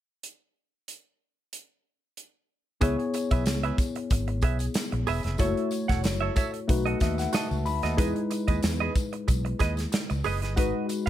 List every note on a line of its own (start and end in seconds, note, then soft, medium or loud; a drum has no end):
0.23 closed hi-hat medium
0.88 closed hi-hat soft
1.53 closed hi-hat medium
2.17 closed hi-hat soft
2.81 2.95 C#2 medium
2.81 5.35 B3 medium
2.81 5.36 E4 medium
2.81 3.04 G#4 medium
2.81 5.36 G#4 medium
2.81 2.99 B4 medium
2.81 5.37 C#5 medium
2.81 2.98 E5 medium
2.81 kick loud
2.81 closed hi-hat medium
2.81 tambourine soft
2.99 muted clean electric guitar stroke soft
2.99 closed hi-hat soft
3.14 muted clean electric guitar stroke soft
3.14 closed hi-hat medium
3.14 tambourine soft
3.31 3.46 B1 medium
3.31 3.46 G#4 soft
3.31 3.46 B4 medium
3.31 3.46 E5 medium
3.31 kick medium
3.31 closed hi-hat soft
3.31 tambourine soft
3.46 3.70 C#2 medium
3.46 muted clean electric guitar stroke soft
3.46 snare loud
3.46 closed hi-hat medium
3.46 tambourine medium
3.63 3.78 G#4 medium
3.63 3.78 B4 medium
3.63 3.79 E5 medium
3.63 closed hi-hat soft
3.78 muted clean electric guitar stroke soft
3.78 kick medium
3.78 closed hi-hat medium
3.78 tambourine medium
3.96 muted clean electric guitar stroke soft
3.96 closed hi-hat soft
4.10 4.43 G#1 medium
4.10 muted clean electric guitar stroke soft
4.10 kick loud
4.10 closed hi-hat medium
4.10 tambourine medium
4.28 muted clean electric guitar stroke soft
4.28 closed hi-hat soft
4.42 4.67 B1 medium
4.42 4.65 G#4 medium
4.42 4.60 B4 medium
4.42 4.59 E5 medium
4.42 kick medium
4.42 closed hi-hat medium
4.42 tambourine soft
4.59 muted clean electric guitar stroke soft
4.59 closed hi-hat medium
4.59 tambourine soft
4.74 muted clean electric guitar stroke soft
4.74 snare medium
4.74 closed hi-hat medium
4.74 tambourine medium
4.92 5.04 A#1 medium
4.92 muted clean electric guitar stroke soft
4.92 closed hi-hat soft
5.07 5.21 E1 medium
5.07 5.25 G#4 medium
5.07 5.24 B4 medium
5.07 5.23 E5 loud
5.07 open hi-hat medium
5.07 tambourine soft
5.23 5.36 F1 medium
5.23 5.39 G#4 soft
5.23 5.39 B4 soft
5.23 5.39 E5 medium
5.23 snare soft
5.23 closed hi-hat soft
5.23 tambourine soft
5.38 5.53 F#1 loud
5.38 5.46 G#3 medium
5.38 6.66 E4 medium
5.38 6.66 F#4 medium
5.38 5.69 A4 medium
5.38 5.70 C#5 medium
5.38 6.67 C#5 medium
5.38 5.70 E5 medium
5.38 kick loud
5.38 closed hi-hat medium
5.38 tambourine soft
5.45 6.67 A3 medium
5.57 closed hi-hat soft
5.71 muted clean electric guitar stroke soft
5.71 closed hi-hat medium
5.71 tambourine soft
5.88 6.04 E1 medium
5.88 6.02 A4 soft
5.88 6.03 C#5 soft
5.88 6.04 F#5 medium
5.88 kick medium
5.88 snare soft
5.88 closed hi-hat soft
5.88 tambourine soft
6.04 6.28 F#1 medium
6.04 muted clean electric guitar stroke soft
6.04 snare loud
6.04 closed hi-hat medium
6.04 tambourine medium
6.21 6.35 A4 soft
6.21 6.36 C#5 medium
6.21 6.36 E5 medium
6.36 6.59 A4 medium
6.36 6.53 C#5 medium
6.36 6.52 E5 medium
6.36 kick medium
6.36 closed hi-hat medium
6.36 tambourine medium
6.54 muted clean electric guitar stroke medium
6.54 closed hi-hat soft
6.68 6.93 B1 loud
6.68 7.95 A3 medium
6.68 7.96 D#4 medium
6.68 7.96 F#4 medium
6.68 7.96 B4 medium
6.68 muted clean electric guitar stroke soft
6.68 kick loud
6.68 closed hi-hat medium
6.68 tambourine soft
6.86 7.00 F#4 medium
6.86 7.01 A4 medium
6.86 7.01 D#5 medium
6.86 closed hi-hat soft
7.00 7.26 D#2 medium
7.00 7.19 F#4 soft
7.00 7.18 A4 medium
7.00 7.17 D#5 medium
7.00 7.18 E5 medium
7.00 kick medium
7.00 snare soft
7.00 closed hi-hat medium
7.00 tambourine soft
7.18 7.33 F#5 medium
7.18 muted clean electric guitar stroke medium
7.18 snare soft
7.18 closed hi-hat medium
7.18 tambourine soft
7.33 7.56 F#4 medium
7.33 7.51 A4 medium
7.33 7.49 D#5 medium
7.33 7.64 A5 medium
7.33 snare loud
7.33 closed hi-hat medium
7.33 tambourine medium
7.51 7.66 C#2 medium
7.51 muted clean electric guitar stroke medium
7.51 tambourine soft
7.66 7.79 D2 medium
7.66 7.96 B5 medium
7.66 muted clean electric guitar stroke soft
7.66 open hi-hat medium
7.66 tambourine soft
7.83 7.98 D#2 medium
7.83 7.97 F#4 soft
7.83 7.98 A4 medium
7.83 7.98 D#5 medium
7.83 snare soft
7.83 closed hi-hat soft
7.83 tambourine soft
7.97 8.11 E2 medium
7.97 10.53 G#3 medium
7.97 10.53 D#4 medium
7.97 10.53 E4 medium
7.97 8.21 G#4 medium
7.97 8.15 B4 medium
7.97 10.54 B4 medium
7.97 8.14 D#5 medium
7.97 kick loud
7.97 closed hi-hat loud
7.97 tambourine soft
8.16 muted clean electric guitar stroke soft
8.16 closed hi-hat soft
8.30 muted clean electric guitar stroke soft
8.30 closed hi-hat medium
8.30 tambourine soft
8.48 8.59 D#2 medium
8.48 8.62 G#4 soft
8.48 8.62 B4 soft
8.48 8.63 D#5 medium
8.48 kick medium
8.48 closed hi-hat soft
8.48 tambourine soft
8.63 8.88 E2 medium
8.63 muted clean electric guitar stroke soft
8.63 snare loud
8.63 closed hi-hat medium
8.63 tambourine medium
8.80 8.94 G#4 medium
8.80 8.95 B4 medium
8.80 8.96 D#5 medium
8.96 kick medium
8.96 closed hi-hat medium
8.96 tambourine medium
9.13 muted clean electric guitar stroke medium
9.13 closed hi-hat soft
9.28 9.52 B1 loud
9.28 muted clean electric guitar stroke soft
9.28 kick medium
9.28 closed hi-hat medium
9.28 tambourine medium
9.45 muted clean electric guitar stroke soft
9.45 closed hi-hat soft
9.59 9.85 D#2 medium
9.59 9.82 G#4 medium
9.59 9.77 B4 medium
9.59 9.76 D#5 medium
9.59 kick medium
9.59 snare soft
9.59 closed hi-hat medium
9.59 tambourine soft
9.77 muted clean electric guitar stroke soft
9.77 snare soft
9.77 closed hi-hat medium
9.77 tambourine soft
9.92 muted clean electric guitar stroke soft
9.92 snare medium
9.92 closed hi-hat medium
9.92 tambourine medium
10.10 10.21 C#2 medium
10.10 muted clean electric guitar stroke medium
10.10 closed hi-hat soft
10.10 tambourine soft
10.24 10.43 F#1 medium
10.24 10.43 G#4 medium
10.24 10.42 B4 medium
10.24 10.41 D#5 medium
10.24 open hi-hat medium
10.24 tambourine soft
10.42 10.58 G1 medium
10.42 10.56 G#4 soft
10.42 10.56 B4 soft
10.42 10.57 D#5 soft
10.42 snare soft
10.42 closed hi-hat soft
10.56 10.71 G#1 medium
10.56 11.10 G#3 medium
10.56 11.10 D#4 medium
10.56 10.87 F#4 medium
10.56 11.10 F#4 medium
10.56 10.87 B4 medium
10.56 11.10 B4 medium
10.56 10.88 D#5 medium
10.56 kick loud
10.56 closed hi-hat medium
10.56 tambourine soft
10.89 muted clean electric guitar stroke soft
10.89 closed hi-hat medium
10.89 tambourine soft
11.06 11.10 F5 soft
11.06 tambourine soft